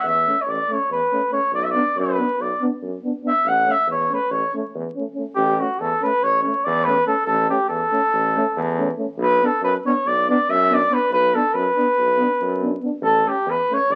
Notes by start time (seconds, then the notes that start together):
0.03 E2 E5
0.27 A3 C#4
0.42 C#5
0.46 A1 D5
0.69 A3 C#4 C#5
0.89 E2 B4
1.13 A3 C#4
1.31 A3 C#4 C#5
1.52 B1 D5
1.64 E5
1.70 B3 D5
1.75 D4
1.96 F#2 B4
2.18 B3 D4
2.39 B1 D5
2.61 B3 D4
2.82 F#2
3.03 B3 D4
3.23 B3 D4
3.27 E5
3.44 A1 F#5
3.66 A3 C#4
3.71 E5
3.87 E2
3.91 C#5
4.10 A3 C#4
4.14 B4
4.30 A1 C#5
4.54 A3 C#4
4.75 E2
4.96 A3 C#4
5.15 A3 C#4
5.35 A1 G4
5.59 A3 C#4 F#4
5.79 E2 A4
6.02 A3 C#4 B4
6.22 A1 C#5
6.43 A3 C#4 C#5
6.64 E2 D5
6.84 A3 C#4 B4
7.06 A3 C#4 A4
7.26 A1 A4
7.49 A3 C#4 G4
7.69 E2 A4
7.92 A3 C#4
8.13 A1
8.36 A3 C#4
8.57 E2
8.79 A3 C#4
8.98 A3 C#4
9.17 B1
9.22 B4
9.41 B3 D4
9.45 A4
9.61 F#2 B4
9.85 B3 D4 C#5
10.06 B1 D5
10.29 B3 D4 D5
10.49 F#2 E5
10.70 B3 D4
10.74 D5
10.89 B3 D4
10.94 B4
11.10 B1 B4
11.33 B3 D4 A4
11.54 F#2 B4
11.76 B3 D4
11.98 B1
12.18 B3 D4
12.41 F#2
12.60 B3 D4
12.81 B3 D4
13.01 A1 A4
13.25 A3 C#4 G4
13.46 E2
13.50 B4
13.70 A3 C#4 C#5
13.89 A1 D5